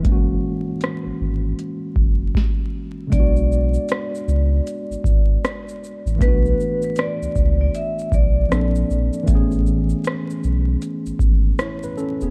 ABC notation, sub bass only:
X:1
M:4/4
L:1/16
Q:"Swing 16ths" 1/4=78
K:Bdor
V:1 name="Sub bass" clef=bass
F,,,2 z3 G,,, G,,,2 z2 F,,,2 z4 | B,,,4 z2 C,,2 z G,,, G,,,2 z3 A,,, | B,,,2 z3 C,, C,,2 z2 B,,,2 ^A,,,2 A,,, z | A,,,4 z2 B,,,2 z G,,, G,,,2 z3 E,,, |]